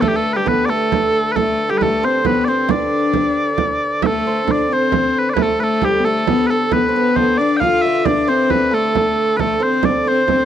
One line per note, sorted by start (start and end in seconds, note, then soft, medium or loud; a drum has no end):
0.00 4.03 D3 medium
0.00 0.37 A3 medium
0.00 0.35 G4 medium
0.00 0.15 A4 medium
0.00 0.08 A4 medium
0.00 0.45 B4 medium
0.00 frame drum medium
0.08 0.16 G4 medium
0.16 0.68 A4 medium
0.16 0.33 A4 medium
0.25 frame drum soft
0.33 0.46 G3 medium
0.33 1.69 G4 medium
0.33 0.48 G4 medium
0.33 0.37 B4 medium
0.46 0.70 B3 medium
0.46 2.09 B4 medium
0.46 0.65 B4 loud
0.46 frame drum medium
0.65 1.19 A3 medium
0.65 1.36 A4 medium
0.65 0.70 D5 medium
0.65 frame drum soft
0.70 1.32 A4 medium
0.92 frame drum medium
1.32 1.36 B4 medium
1.36 1.68 A3 medium
1.36 1.70 A4 medium
1.36 4.05 A4 medium
1.36 frame drum medium
1.60 frame drum soft
1.69 1.85 G3 medium
1.69 4.83 G4 medium
1.69 1.78 G4 medium
1.78 1.82 B4 medium
1.78 frame drum medium
1.82 2.06 A3 medium
1.82 2.05 A4 medium
2.03 2.25 C4 medium
2.03 2.32 C5 medium
2.03 2.27 C5 medium
2.03 frame drum soft
2.25 2.51 B3 medium
2.25 2.54 B4 medium
2.25 2.45 B4 medium
2.25 frame drum medium
2.45 4.26 C5 medium
2.45 2.71 C5 medium
2.45 2.48 D5 medium
2.50 2.72 C4 medium
2.69 3.60 D4 medium
2.69 5.17 D5 medium
2.69 4.03 D5 medium
2.69 frame drum medium
3.14 frame drum medium
3.36 frame drum soft
3.58 frame drum medium
4.02 9.37 D3 medium
4.02 4.46 A3 medium
4.02 5.39 A4 medium
4.02 4.06 E5 medium
4.02 frame drum medium
4.06 4.51 A4 medium
4.26 4.72 C5 medium
4.26 frame drum soft
4.47 4.69 D4 medium
4.47 4.73 D5 medium
4.47 frame drum medium
4.71 5.34 C4 medium
4.71 4.92 C5 medium
4.71 5.19 C5 medium
4.92 6.78 C5 medium
4.92 frame drum medium
5.15 5.29 B4 medium
5.15 frame drum soft
5.29 5.34 D5 medium
5.34 5.42 B4 medium
5.34 frame drum loud
5.38 5.59 A3 medium
5.38 5.60 A4 medium
5.42 5.60 A4 medium
5.60 5.84 A3 medium
5.60 6.06 A4 medium
5.60 5.85 A4 medium
5.60 5.63 B4 medium
5.60 frame drum soft
5.82 6.00 G3 medium
5.82 8.97 G4 medium
5.82 6.05 G4 medium
5.82 frame drum medium
5.99 6.06 B3 medium
6.04 6.27 A3 medium
6.04 6.47 A4 medium
6.04 6.50 A4 medium
6.27 6.69 B3 medium
6.27 frame drum medium
6.47 6.73 A4 medium
6.47 6.50 B4 medium
6.51 8.71 A4 medium
6.71 6.92 B3 medium
6.71 6.95 B4 medium
6.71 7.16 B4 medium
6.71 frame drum medium
6.89 7.40 B3 medium
6.89 7.02 C5 medium
6.95 8.34 B4 medium
6.95 frame drum soft
7.16 7.38 C5 loud
7.16 frame drum medium
7.38 7.63 D4 medium
7.38 7.57 D5 medium
7.38 8.05 D5 medium
7.57 7.82 F5 loud
7.57 7.60 G5 loud
7.61 8.07 F4 loud
7.61 7.92 F5 medium
7.61 frame drum medium
7.82 8.05 E5 medium
7.82 10.15 E5 medium
7.82 frame drum soft
8.05 8.30 D4 medium
8.05 8.28 D5 medium
8.05 9.83 D5 medium
8.05 frame drum medium
8.28 8.74 C4 medium
8.28 9.60 C5 medium
8.28 8.51 C5 medium
8.50 8.74 B4 loud
8.50 frame drum medium
8.71 9.40 A3 medium
8.71 9.36 A4 medium
8.71 9.37 A4 medium
8.95 frame drum medium
9.37 10.45 D3 medium
9.37 9.61 A3 medium
9.37 10.45 A4 medium
9.37 9.63 A4 medium
9.37 9.40 B4 medium
9.37 frame drum medium
9.60 10.07 C5 medium
9.60 9.85 C5 medium
9.64 10.05 C4 medium
9.83 10.45 D5 medium
9.83 10.08 D5 medium
9.83 frame drum medium
10.07 10.28 C4 medium
10.07 10.28 C5 medium
10.07 10.45 C5 medium
10.28 10.45 C4 medium
10.28 10.45 C5 medium
10.28 frame drum medium